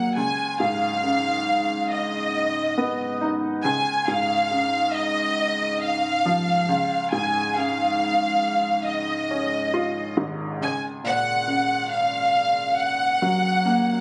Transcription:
Already playing: felt piano C#2 F#3 A#3, violin section F#5
0.17 felt piano C#2, violin section G#5
0.60 felt piano G#2, violin section F5
1.04 felt piano C#3
1.91 violin section D#5
2.78 felt piano B3
3.21 felt piano D#4
3.65 felt piano C#2, violin section G#5
4.08 felt piano G#2, violin section F5
4.51 felt piano C#3
4.95 violin section D#5
5.82 violin section F5
6.26 felt piano F3
6.69 felt piano C#2
7.12 felt piano G#2, violin section G#5
7.56 felt piano C#3, violin section F5
8.86 violin section D#5
9.31 felt piano C#4
9.74 felt piano F4
10.17 felt piano G#1 G#2
10.61 felt piano C#2, violin section G#5
11.04 felt piano A#2, violin section F#5
11.48 felt piano C#3
11.92 violin section F5
12.79 violin section F#5
13.22 felt piano F#3
13.65 felt piano A#3

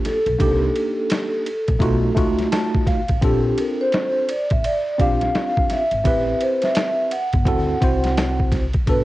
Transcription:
Already playing: tine electric piano A#3 D4 F4 G4
0.05 vibraphone A4, snare, ride
0.26 upright bass B1, ride
0.38 upright bass C2, tine electric piano A#3 D4 D#4 G4, kick, ride
0.76 ride
1.10 snare, hi-hat pedal, ride
1.46 ride
1.68 upright bass A#1, kick, ride
1.79 upright bass B1, tine electric piano A3 D#4 F4 F#4, kick, ride
2.15 upright bass C#2, tine electric piano A3 D#4 F4 F#4, kick, ride
2.39 snare, ride
2.52 tine electric piano A5, snare, hi-hat pedal, ride
2.75 kick
2.87 tine electric piano F5, kick, snare, ride
3.08 upright bass A1, kick, ride
3.21 upright bass A#1, tine electric piano C4 D4 F4 A4, vibraphone G4, kick, ride
3.58 vibraphone A#4, ride
3.81 vibraphone C5
3.92 snare, hi-hat pedal, ride
4.29 vibraphone D5, ride
4.50 upright bass A1, vibraphone E5, kick, ride
4.64 vibraphone D5, ride
4.98 upright bass A#1, tine electric piano C4 D4 F4 G4, vibraphone F5, kick, ride
5.21 snare, ride
5.35 snare, hi-hat pedal, ride
5.57 kick
5.70 vibraphone E5, snare, ride
5.91 upright bass G#1, ride
6.04 upright bass A1, tine electric piano C4 E4 G4 B4, kick, ride
6.41 vibraphone C5, ride
6.62 vibraphone E5, snare, ride
6.75 snare, hi-hat pedal, ride
7.11 vibraphone F#5, ride
7.33 upright bass G1, kick, ride
7.45 upright bass D2, tine electric piano C4 E4 F#4 A4, kick, ride
7.81 upright bass C2, tine electric piano C4 E4 F#4 C5, kick, ride
8.04 snare, ride
8.17 snare, hi-hat pedal, ride
8.40 kick
8.52 kick, snare, ride
8.73 kick, ride
8.86 upright bass G1, tine electric piano B2 D4 F#4 A4, vibraphone B4, kick, ride

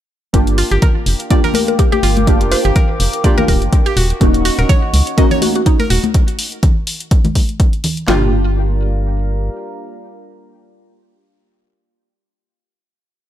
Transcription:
0.33 fm bass G1, synth stab A#3 D4 F4 G4, analog synth pad A#4 F5 G5 D6, kick, closed hi-hat
0.47 closed hi-hat
0.58 synth arpeggio sound F4, open hi-hat
0.71 fm bass G1, synth arpeggio sound G4, closed hi-hat
0.82 synth arpeggio sound A#4, kick, closed hi-hat, low conga
1.06 fm bass F1, open hi-hat
1.20 closed hi-hat
1.30 synth stab A#3 D4 F4 G4, synth arpeggio sound D5, kick, closed hi-hat
1.44 synth arpeggio sound A#4, closed hi-hat, low conga
1.54 synth pluck A#4, open hi-hat, high conga
1.68 synth pluck A#4, closed hi-hat
1.79 synth pluck G4, kick, closed hi-hat
1.92 synth arpeggio sound G4, synth pluck G4, closed hi-hat, high conga
2.03 fm bass G1, synth arpeggio sound F4, open hi-hat
2.17 closed hi-hat, high conga
2.27 synth stab A#3 D4 F4 G4, kick, closed hi-hat
2.41 fm bass F1, closed hi-hat
2.52 synth arpeggio sound F4, synth pluck C5, open hi-hat
2.65 fm bass G1, synth arpeggio sound G4, closed hi-hat
2.75 synth arpeggio sound A#4, kick, closed hi-hat, low conga
3.00 fm bass F1, open hi-hat
3.13 closed hi-hat
3.23 synth stab A#3 D4 F4 G4, synth arpeggio sound D5, kick, closed hi-hat
3.38 synth arpeggio sound A#4, synth pluck A#4, closed hi-hat, high conga, low conga
3.48 fm bass D1, synth pluck A#4, kick, open hi-hat
3.62 fm bass G1, closed hi-hat
3.73 kick, closed hi-hat
3.86 synth arpeggio sound G4, closed hi-hat
3.97 fm bass D#1, synth arpeggio sound F#4, analog synth pad D#5 F#5 C#6, open hi-hat
4.10 closed hi-hat
4.20 fm bass D#1, synth stab A#3 C#4 D#4 F#4, kick, closed hi-hat
4.34 closed hi-hat
4.45 synth arpeggio sound F#4, open hi-hat
4.59 fm bass D#1, synth arpeggio sound A#4, closed hi-hat
4.69 synth arpeggio sound C#5, kick, closed hi-hat, low conga
4.93 fm bass C#2, open hi-hat
5.07 closed hi-hat
5.17 synth stab A#3 C#4 D#4 F#4, synth arpeggio sound D#5, kick, closed hi-hat
5.31 synth arpeggio sound C#5, closed hi-hat, low conga
5.42 synth pluck F#4, open hi-hat, high conga
5.55 synth pluck F#4, closed hi-hat
5.66 synth pluck D#4, kick, closed hi-hat
5.79 synth arpeggio sound A#4, closed hi-hat, high conga
5.90 fm bass D#1, synth arpeggio sound F#4, open hi-hat
6.04 closed hi-hat, high conga
6.14 kick, closed hi-hat
6.28 closed hi-hat
6.39 open hi-hat
6.52 closed hi-hat
6.63 kick, closed hi-hat, low conga
6.87 open hi-hat
7.00 closed hi-hat
7.11 kick, closed hi-hat
7.24 closed hi-hat, high conga, low conga
7.35 kick, open hi-hat
7.49 closed hi-hat
7.60 kick, closed hi-hat
7.73 closed hi-hat
7.84 open hi-hat, low conga
7.97 closed hi-hat
8.07 fm bass G1, synth stab A#3 D4 F4 G4, synth arpeggio sound F4, analog synth pad G4 A#4 D5 F5 A#5, snare, clap, floor tom

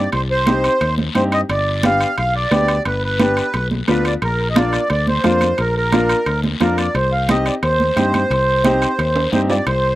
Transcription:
0.12 fingered electric bass C2, accordion C5, high conga, high timbale, long guiro
0.31 accordion C5
0.46 upright piano C4 D#4 G4, high conga, high timbale, short guiro
0.64 high timbale, short guiro
0.81 fingered electric bass D#2, high conga, high timbale, long guiro
0.98 high conga
1.15 fingered electric bass G2, upright piano C4 D#4 G4, accordion C5, high conga, high timbale, short guiro
1.32 accordion D#5, high timbale, short guiro
1.49 fingered electric bass G1, accordion D5, high conga, high timbale, long guiro
1.83 upright piano B3 D4 G4, accordion F5, high conga, high timbale, short guiro
2.00 high timbale, short guiro
2.18 fingered electric bass B1, accordion F5, high conga, high timbale, long guiro
2.36 accordion D5
2.51 fingered electric bass D2, upright piano B3 D4 G4, high conga, high timbale, short guiro
2.68 high timbale, short guiro
2.85 fingered electric bass G1, accordion B4, high conga, high timbale, long guiro
3.04 accordion B4
3.19 upright piano B3 D4 G4, high conga, high timbale, short guiro
3.37 high timbale, short guiro
3.54 fingered electric bass B1, high conga, high timbale, long guiro
3.71 high conga
3.88 fingered electric bass D2, upright piano B3 D4 F4, accordion B4, high conga, high timbale, short guiro
4.05 accordion D5, high timbale, short guiro
4.22 fingered electric bass A#1, accordion A#4, high conga, high timbale, long guiro
4.50 accordion D#5
4.55 upright piano A#3 D4 F4, accordion D5, high conga, high timbale, short guiro
4.73 high timbale, short guiro
4.90 fingered electric bass D2, accordion D5, high conga, high timbale, long guiro
5.07 accordion C5, high conga
5.24 fingered electric bass F2, upright piano A#3 D4 F4, high conga, high timbale, low timbale, short guiro
5.41 high conga, high timbale, short guiro
5.58 fingered electric bass A#1, accordion A#4, high conga, high timbale, long guiro
5.77 accordion A#4
5.92 upright piano A#3 D4 F4, high conga, high timbale, short guiro
6.09 high timbale, short guiro
6.26 fingered electric bass D2, high conga, high timbale, long guiro
6.44 high conga
6.60 fingered electric bass F2, upright piano A#3 D4 F4, accordion A#4, high conga, high timbale, short guiro
6.78 accordion D5, high timbale, short guiro
6.94 fingered electric bass C2, accordion C5, high conga, high timbale, long guiro
7.12 accordion F5
7.29 upright piano C4 D#4 G4, accordion D#5, high conga, high timbale, short guiro
7.46 accordion D5, high timbale, short guiro
7.63 fingered electric bass D#2, accordion C5, high conga, high timbale, long guiro
7.80 high conga
7.96 fingered electric bass G2, upright piano C4 D#4 G4, high conga, high timbale, short guiro
8.14 high conga, high timbale, short guiro
8.30 fingered electric bass C2, high conga, high timbale, long guiro
8.64 upright piano C4 D#4 G4, high conga, high timbale, short guiro
8.82 high timbale, short guiro
8.99 fingered electric bass D#2, high conga, high timbale, long guiro
9.16 high timbale
9.32 fingered electric bass G2, upright piano C4 D#4 G4, accordion C5, high conga, short guiro
9.49 accordion D5, low timbale, short guiro
9.66 fingered electric bass C2, accordion C5, high conga, high timbale, long guiro

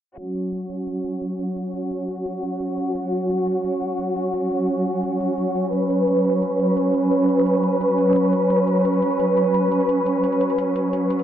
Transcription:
0.18 string section F#3 C#4 F#4, closed hi-hat
0.35 closed hi-hat
0.53 closed hi-hat
0.61 closed hi-hat
0.70 closed hi-hat
0.79 closed hi-hat
0.87 closed hi-hat
1.05 closed hi-hat
1.22 closed hi-hat
1.39 closed hi-hat
1.48 closed hi-hat
1.57 closed hi-hat
1.74 closed hi-hat
1.91 closed hi-hat
2.00 closed hi-hat
2.09 closed hi-hat
2.17 closed hi-hat
2.26 closed hi-hat
2.43 closed hi-hat
2.61 closed hi-hat
2.78 closed hi-hat
2.87 closed hi-hat
2.95 closed hi-hat
3.13 closed hi-hat
3.30 closed hi-hat
3.39 closed hi-hat
3.47 closed hi-hat
3.56 closed hi-hat
3.65 closed hi-hat
3.82 closed hi-hat
3.99 closed hi-hat
4.17 closed hi-hat
4.25 closed hi-hat
4.34 closed hi-hat
4.51 closed hi-hat
4.69 closed hi-hat
4.77 closed hi-hat
4.86 closed hi-hat
4.95 closed hi-hat
5.03 closed hi-hat
5.21 closed hi-hat
5.38 closed hi-hat
5.56 closed hi-hat
5.64 closed hi-hat
5.73 string section B4, closed hi-hat
5.90 closed hi-hat
6.08 closed hi-hat
6.16 closed hi-hat
6.25 closed hi-hat
6.34 closed hi-hat
6.42 closed hi-hat
6.60 closed hi-hat
6.77 closed hi-hat
6.94 closed hi-hat
7.03 closed hi-hat
7.12 closed hi-hat
7.29 closed hi-hat
7.46 closed hi-hat
7.55 closed hi-hat
7.64 closed hi-hat
7.72 closed hi-hat
7.81 closed hi-hat
7.98 closed hi-hat
8.16 closed hi-hat
8.33 closed hi-hat
8.42 closed hi-hat
8.50 closed hi-hat
8.68 closed hi-hat
8.85 closed hi-hat
8.94 closed hi-hat
9.02 closed hi-hat
9.11 closed hi-hat
9.20 closed hi-hat
9.37 closed hi-hat
9.54 closed hi-hat
9.72 closed hi-hat
9.80 closed hi-hat
9.89 closed hi-hat
10.06 closed hi-hat
10.24 closed hi-hat
10.32 closed hi-hat
10.41 closed hi-hat
10.50 closed hi-hat
10.58 closed hi-hat
10.76 closed hi-hat
10.93 closed hi-hat
11.10 closed hi-hat
11.19 closed hi-hat

